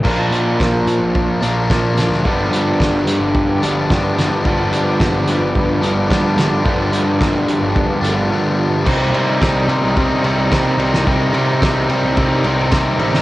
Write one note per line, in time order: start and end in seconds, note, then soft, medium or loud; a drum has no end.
0.03 0.30 A#1 medium
0.03 1.40 A#2 medium
0.03 1.43 F3 medium
0.03 1.41 A#3 medium
0.03 1.40 D4 loud
0.03 8.82 F4 medium
0.03 2.26 F4 medium
0.03 2.23 C5 medium
0.03 2.23 A#5 medium
0.03 8.82 D6 medium
0.03 kick loud
0.03 crash loud
0.31 0.57 A#2 medium
0.31 closed hi-hat medium
0.60 0.85 A#1 medium
0.60 kick loud
0.60 snare loud
0.87 0.99 A#2 medium
0.87 closed hi-hat medium
1.00 1.13 A#1 medium
1.15 1.40 A#2 loud
1.15 kick loud
1.41 1.68 A#1 medium
1.41 1.68 A#2 medium
1.41 1.70 F3 medium
1.41 1.68 A#3 medium
1.41 1.72 D4 medium
1.41 closed hi-hat medium
1.69 2.23 A#2 medium
1.69 1.97 A#2 medium
1.69 2.26 F3 medium
1.69 2.24 A#3 medium
1.69 2.27 D4 medium
1.69 kick loud
1.69 snare loud
1.95 2.09 A#1 medium
1.95 snare medium
1.95 closed hi-hat loud
2.09 2.23 D2 medium
2.09 snare soft
2.24 2.50 G1 medium
2.24 3.65 G2 medium
2.24 3.61 D3 medium
2.24 4.46 F3 medium
2.24 3.63 G3 loud
2.24 3.63 B3 loud
2.24 3.61 D4 medium
2.24 4.47 G4 loud
2.24 8.82 B4 medium
2.24 8.82 G5 medium
2.24 kick loud
2.51 2.77 G2 medium
2.51 closed hi-hat medium
2.80 3.05 G1 medium
2.80 kick loud
2.80 snare loud
3.06 3.19 G2 medium
3.06 closed hi-hat loud
3.20 3.33 G1 medium
3.34 3.60 G2 loud
3.34 kick loud
3.61 3.88 G1 medium
3.61 3.89 D3 medium
3.61 3.90 G3 medium
3.61 3.92 B3 medium
3.61 3.92 D4 medium
3.61 closed hi-hat medium
3.65 3.89 G2 medium
3.89 4.43 G2 medium
3.89 4.18 G2 medium
3.89 4.44 D3 medium
3.89 4.45 G3 medium
3.89 4.46 B3 medium
3.89 4.47 D4 medium
3.89 kick loud
3.89 snare loud
4.16 4.29 G1 loud
4.16 snare medium
4.16 closed hi-hat loud
4.30 4.43 G2 medium
4.44 4.71 G1 medium
4.44 5.81 G2 medium
4.44 5.81 D3 medium
4.44 6.65 F3 loud
4.44 5.83 G3 loud
4.44 5.81 B3 loud
4.44 5.80 D4 loud
4.44 6.66 G4 loud
4.44 kick loud
4.71 4.98 G2 medium
4.71 closed hi-hat medium
5.00 5.26 G1 medium
5.00 kick loud
5.00 snare loud
5.27 5.39 G2 medium
5.27 closed hi-hat medium
5.40 5.54 G1 medium
5.55 5.81 G2 loud
5.55 kick loud
5.81 6.08 G1 medium
5.81 6.07 G2 medium
5.81 6.08 D3 medium
5.81 6.10 G3 medium
5.81 6.08 B3 medium
5.81 6.08 D4 medium
5.81 closed hi-hat medium
6.08 6.62 G2 medium
6.08 6.38 G2 medium
6.08 6.63 D3 medium
6.08 6.65 G3 medium
6.08 6.64 B3 medium
6.08 6.65 D4 loud
6.08 kick loud
6.08 snare loud
6.36 6.50 G1 loud
6.36 snare medium
6.36 closed hi-hat loud
6.51 6.64 G2 medium
6.63 6.91 G1 loud
6.63 8.01 G2 loud
6.63 8.01 D3 loud
6.63 8.85 F3 medium
6.63 8.01 G3 medium
6.63 8.01 B3 loud
6.63 7.99 D4 medium
6.63 8.85 G4 loud
6.63 kick loud
6.91 7.18 G2 medium
6.91 closed hi-hat medium
7.21 7.46 G1 medium
7.21 kick loud
7.21 snare loud
7.47 7.60 G2 medium
7.47 closed hi-hat loud
7.61 7.74 G1 medium
7.75 8.01 G2 loud
7.75 kick loud
8.01 8.28 G1 medium
8.01 8.28 G2 medium
8.01 8.29 D3 medium
8.01 8.29 G3 medium
8.01 8.29 B3 medium
8.01 8.28 D4 medium
8.01 closed hi-hat loud
8.29 8.83 G2 medium
8.29 8.84 D3 medium
8.29 8.84 G3 medium
8.29 8.85 B3 medium
8.29 8.85 D4 medium
8.85 9.11 C2 medium
8.85 9.12 C3 loud
8.85 9.13 D#3 medium
8.85 9.13 G3 loud
8.85 9.14 C4 loud
8.85 13.22 D#4 medium
8.85 9.14 D#4 loud
8.85 9.14 G4 loud
8.85 13.22 C5 medium
8.85 13.22 G5 medium
8.85 11.04 D#6 medium
8.85 kick loud
8.85 crash loud
9.12 9.39 C3 medium
9.12 9.41 C3 medium
9.12 9.40 D#3 medium
9.12 9.41 G3 medium
9.12 9.42 C4 medium
9.12 9.42 D#4 medium
9.12 9.41 G4 loud
9.12 ride medium
9.41 9.67 C2 medium
9.41 9.68 C3 loud
9.41 9.67 D#3 medium
9.41 9.69 G3 loud
9.41 9.69 C4 loud
9.41 9.70 D#4 loud
9.41 9.69 G4 loud
9.41 kick loud
9.41 snare loud
9.41 ride loud
9.68 9.83 C3 loud
9.68 9.95 C3 medium
9.68 9.96 D#3 medium
9.68 9.96 G3 medium
9.68 9.96 C4 medium
9.68 9.97 D#4 medium
9.68 9.97 G4 medium
9.68 ride medium
9.82 9.95 C2 medium
9.96 10.23 C3 medium
9.96 10.22 C3 loud
9.96 10.23 D#3 loud
9.96 10.23 G3 medium
9.96 10.24 C4 medium
9.96 10.24 D#4 loud
9.96 10.24 G4 loud
9.96 kick loud
9.96 ride medium
10.23 10.49 C2 medium
10.23 10.49 C3 medium
10.23 10.50 D#3 medium
10.23 10.50 G3 loud
10.23 10.50 C4 loud
10.23 10.51 D#4 loud
10.23 10.51 G4 loud
10.23 ride medium
10.51 10.77 C3 loud
10.51 10.79 D#3 loud
10.51 10.78 G3 loud
10.51 10.78 C4 loud
10.51 10.78 D#4 loud
10.51 10.80 G4 loud
10.51 kick loud
10.51 snare loud
10.51 ride loud
10.77 11.04 C2 medium
10.77 11.05 C3 medium
10.77 11.06 D#3 medium
10.77 11.06 G3 medium
10.77 11.06 C4 loud
10.77 11.07 D#4 loud
10.77 11.07 G4 medium
10.77 ride medium
10.94 snare medium
11.06 11.33 C2 medium
11.06 11.32 C3 loud
11.06 11.33 D#3 loud
11.06 11.33 G3 loud
11.06 11.34 C4 loud
11.06 11.34 D#4 loud
11.06 11.34 G4 loud
11.06 13.22 D6 medium
11.06 kick loud
11.06 ride loud
11.33 11.60 C3 medium
11.33 11.62 D#3 medium
11.33 11.61 G3 medium
11.33 11.61 C4 medium
11.33 11.62 D#4 loud
11.33 11.63 G4 loud
11.33 ride medium
11.61 11.88 C2 medium
11.61 11.88 C3 loud
11.61 11.89 D#3 medium
11.61 11.90 G3 medium
11.61 11.90 C4 loud
11.61 11.90 D#4 loud
11.61 11.90 G4 loud
11.61 kick loud
11.61 snare loud
11.61 ride loud
11.89 12.04 C3 medium
11.89 12.16 C3 medium
11.89 12.16 D#3 medium
11.89 12.17 G3 medium
11.89 12.18 C4 loud
11.89 12.18 D#4 loud
11.89 12.17 G4 medium
11.89 ride medium
12.03 12.16 C2 medium
12.17 12.43 C3 loud
12.17 12.43 C3 medium
12.17 12.44 D#3 loud
12.17 12.44 G3 loud
12.17 12.44 C4 loud
12.17 12.45 D#4 loud
12.17 12.45 G4 loud
12.17 kick loud
12.17 ride loud
12.44 12.70 C2 medium
12.44 12.70 C3 medium
12.44 12.72 D#3 medium
12.44 12.71 G3 loud
12.44 12.72 C4 loud
12.44 12.72 D#4 loud
12.44 12.73 G4 loud
12.44 ride medium
12.71 12.97 C3 loud
12.71 12.98 C3 loud
12.71 13.00 D#3 loud
12.71 12.98 G3 loud
12.71 12.99 C4 loud
12.71 13.00 D#4 loud
12.71 13.00 G4 loud
12.71 kick loud
12.71 snare loud
12.71 ride loud
12.99 13.22 A1 loud
12.99 13.22 C3 medium
12.99 13.22 D#3 medium
12.99 13.22 G3 loud
12.99 13.22 C4 medium
12.99 13.22 D#4 medium
12.99 13.22 G4 loud
12.99 ride medium
13.14 snare medium